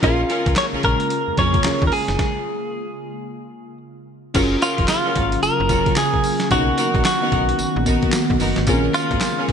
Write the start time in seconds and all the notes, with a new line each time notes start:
0.02 A#1 C#3 G#3 A#3 C#4 F4 G#4 A#4, kick, closed hi-hat
0.30 C#4 F4 G#4 A#4, closed hi-hat
0.46 C#2, kick, closed hi-hat
0.56 C#5, snare, clap, closed hi-hat
0.73 A#1 C#4 F4 G#4 A#4
0.83 A#1 A#4, kick, closed hi-hat
1.00 closed hi-hat
1.10 closed hi-hat
1.28 F2
1.37 F2 C#4 F4 G#4 A#4 C#5, kick, closed hi-hat
1.54 kick, closed hi-hat
1.64 D#2 C#4 F4 G#4 A#4, snare, clap, closed hi-hat
1.82 D#2, kick
1.87 A#4
1.92 G#4, open hi-hat
2.08 F#1, snare, closed hi-hat
2.19 kick, snare
4.34 F#1 C#3 F#3 A#3 C#4 F4 F#4 G#4 A#4, kick, closed hi-hat, crash, tambourine
4.61 C#4 F4 F#4 A#4, closed hi-hat, tambourine
4.78 F1, kick, closed hi-hat
4.88 F4, snare, clap, closed hi-hat, tambourine
5.05 C#4 F4 F#4 A#4
5.16 G#1, kick, closed hi-hat
5.32 closed hi-hat
5.43 F#1 A#4, closed hi-hat, tambourine
5.60 F#1
5.69 C#4 F4 F#4 A#4, kick, closed hi-hat, tambourine
5.86 kick, closed hi-hat
5.96 G#4, snare, clap, closed hi-hat, tambourine
6.14 kick
6.24 open hi-hat, tambourine
6.40 snare, closed hi-hat
6.51 B1 D#3 B3 C#4 D#4 F#4 A#4, kick, closed hi-hat, tambourine
6.77 B3 D#4 F#4 A#4, closed hi-hat, tambourine
6.95 A#1, kick, closed hi-hat
7.05 F#4, snare, clap, closed hi-hat, tambourine
7.22 B3 D#4 F#4 A#4
7.32 B1, kick, closed hi-hat
7.49 closed hi-hat
7.59 A#1, closed hi-hat, tambourine
7.76 A#1
7.86 B3 D#4 F#4 A#4, kick, closed hi-hat, tambourine
8.02 kick, closed hi-hat
8.13 snare, clap, closed hi-hat, tambourine
8.30 B1, kick
8.40 F#1 B3 D#4 F#4 A#4, open hi-hat, tambourine
8.56 G#1, snare, closed hi-hat
8.67 A#1 C#3 G#3 C4 C#4 F4 G#4 A#4, kick, closed hi-hat, tambourine
8.74 C#4
8.94 C#4 F4 G#4 A#4, closed hi-hat, tambourine
9.11 G#1, kick, closed hi-hat
9.21 snare, clap, closed hi-hat, tambourine
9.38 C#4 F4 G#4 A#4
9.49 C#2, kick, closed hi-hat